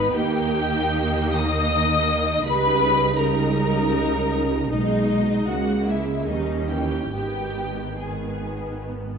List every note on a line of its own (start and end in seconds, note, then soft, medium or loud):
0.00 0.10 G#1 medium
0.00 0.11 G#2 medium
0.00 0.13 B3 medium
0.00 0.13 D#4 medium
0.00 0.13 B4 loud
0.00 0.14 B5 loud
0.13 2.42 D#2 medium
0.13 2.42 D#3 medium
0.13 2.46 A#3 medium
0.13 2.42 D#4 medium
0.13 1.34 G4 medium
0.13 1.33 G5 loud
1.36 2.46 D#5 medium
1.36 2.46 D#6 loud
2.45 4.67 C#2 medium
2.45 4.67 C#3 medium
2.45 3.17 G3 medium
2.45 3.16 D#4 medium
2.45 3.18 B4 loud
2.45 3.17 B5 loud
3.18 4.68 G3 medium
3.18 4.68 D#4 medium
3.18 4.71 A#4 medium
3.18 4.71 A#5 medium
4.70 5.47 B1 medium
4.70 5.48 B2 medium
4.70 5.46 G#3 medium
4.70 5.45 D#4 medium
4.70 5.46 D#4 medium
4.70 5.47 D#5 medium
5.47 6.26 C#2 medium
5.47 6.26 C#3 medium
5.47 6.27 G#3 medium
5.47 6.29 A#3 medium
5.47 5.87 F#4 medium
5.47 5.88 F#5 medium
5.87 6.27 E4 medium
5.87 6.28 E5 medium
6.27 7.12 D#2 medium
6.27 7.12 D#3 medium
6.27 6.70 G3 medium
6.27 7.13 C#4 medium
6.27 6.68 D#4 medium
6.27 6.69 D#5 medium
6.69 7.12 E3 medium
6.69 7.11 G4 medium
6.69 7.12 G5 medium
7.12 9.18 G#1 soft
7.12 9.18 G#2 soft
7.12 7.99 D#3 soft
7.12 7.99 B3 soft
7.12 7.98 G4 medium
7.12 7.99 G5 medium
8.00 9.18 D#3 soft
8.00 9.18 B3 medium
8.00 8.85 G#4 soft
8.00 8.88 G#5 medium